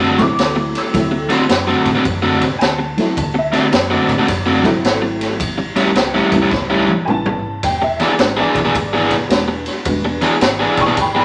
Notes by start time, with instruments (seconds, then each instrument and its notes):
Already playing: fingered electric bass F#2, honky-tonk piano A5
0.00 overdriven electric guitar D3 A3 C4 F#4
0.17 honky-tonk piano F#3 A3 C4 E4 C#6, kick, snare, ride
0.22 honky-tonk piano D6
0.38 fingered electric bass D2, snare, ride
0.56 muted overdriven electric guitar stroke
0.75 honky-tonk piano E6, snare, ride
0.93 fingered electric bass D2, honky-tonk piano F#3 A3 C4 E4, kick, snare, ride
1.11 muted overdriven electric guitar stroke
1.29 overdriven electric guitar D3 A3 C4 F#4, honky-tonk piano C6, snare, ride
1.49 fingered electric bass F#2, muted overdriven electric guitar stroke, snare, ride
1.67 overdriven electric guitar D3 A3 C4 F#4
1.86 fingered electric bass A2, kick, snare, ride
1.95 overdriven electric guitar D3 A3 C4 F#4
2.04 fingered electric bass F#2, muted overdriven electric guitar stroke, kick, ride
2.22 overdriven electric guitar D3 A3 C4 F#4
2.41 kick, snare, ride
2.58 fingered electric bass D2, honky-tonk piano G#5, snare, ride
2.63 honky-tonk piano A5
2.79 muted overdriven electric guitar stroke
2.97 honky-tonk piano F#3 A3 C4 E4, snare, ride
3.17 fingered electric bass D2, honky-tonk piano A5, kick, ride
3.34 muted overdriven electric guitar stroke
3.38 honky-tonk piano E5
3.52 overdriven electric guitar D3 A3 C4 F#4, snare, ride
3.58 honky-tonk piano D5
3.72 fingered electric bass F#2, honky-tonk piano C5, muted overdriven electric guitar stroke, snare, ride
3.90 overdriven electric guitar D3 A3 C4 F#4, honky-tonk piano D5
4.08 fingered electric bass A2, kick, snare, ride
4.18 overdriven electric guitar D3 A3 C4 F#4
4.28 fingered electric bass F#2, muted overdriven electric guitar stroke, kick, snare, ride
4.46 overdriven electric guitar D3 A3 C4 F#4
4.63 honky-tonk piano F#3 A3 C4 E4, kick, snare, ride
4.83 fingered electric bass G#1, snare, ride
5.02 muted overdriven electric guitar stroke
5.21 snare, ride
5.40 fingered electric bass A1, kick, ride
5.58 muted overdriven electric guitar stroke
5.76 overdriven electric guitar A2 G3 C#4 E4, snare, ride
5.95 fingered electric bass C#2, muted overdriven electric guitar stroke, snare, ride
6.14 overdriven electric guitar A2 G3 C#4 E4
6.32 fingered electric bass E2, honky-tonk piano G3 B3 C#4 E4, kick, snare, ride
6.42 overdriven electric guitar A2 G3 C#4 E4
6.51 fingered electric bass C#2, muted overdriven electric guitar stroke, kick, snare
6.70 overdriven electric guitar A2 G3 C#4 E4
6.89 high tom
7.05 fingered electric bass A1, honky-tonk piano G3 B3 C#4 E4 G#5, mid tom
7.10 honky-tonk piano A5
7.26 muted overdriven electric guitar stroke, mid tom
7.63 fingered electric bass E1, honky-tonk piano G5, kick, snare, ride
7.82 honky-tonk piano E5, muted overdriven electric guitar stroke
8.00 overdriven electric guitar E3 B3 D4 G#4, honky-tonk piano D5, snare, ride
8.18 fingered electric bass G#1, honky-tonk piano G#3 B3 D4 F#4 C5, muted overdriven electric guitar stroke, snare, ride
8.37 overdriven electric guitar E3 B3 D4 G#4, honky-tonk piano D5
8.55 fingered electric bass B1, kick, snare, ride
8.65 overdriven electric guitar E3 B3 D4 G#4
8.74 fingered electric bass G#1, muted overdriven electric guitar stroke, kick, ride
8.93 overdriven electric guitar E3 B3 D4 G#4
9.11 kick, snare, ride
9.29 fingered electric bass E1, honky-tonk piano G#3 B3 D4 F#4, snare, ride
9.48 muted overdriven electric guitar stroke
9.66 snare, ride
9.85 fingered electric bass E1, honky-tonk piano G#3 B3 D4 F#4, kick, ride
10.05 muted overdriven electric guitar stroke
10.21 overdriven electric guitar E3 B3 D4 G#4, snare, ride
10.41 fingered electric bass G#1, muted overdriven electric guitar stroke, snare, ride
10.60 overdriven electric guitar E3 B3 D4 G#4
10.76 fingered electric bass B1, honky-tonk piano G#5 C6, kick, snare, ride
10.81 honky-tonk piano C#6
10.86 overdriven electric guitar E3 B3 D4 G#4
10.97 fingered electric bass G#1, honky-tonk piano G5 B5, muted overdriven electric guitar stroke, kick, snare, ride
11.15 overdriven electric guitar E3 B3 D4 G#4, honky-tonk piano A#5
11.19 honky-tonk piano B5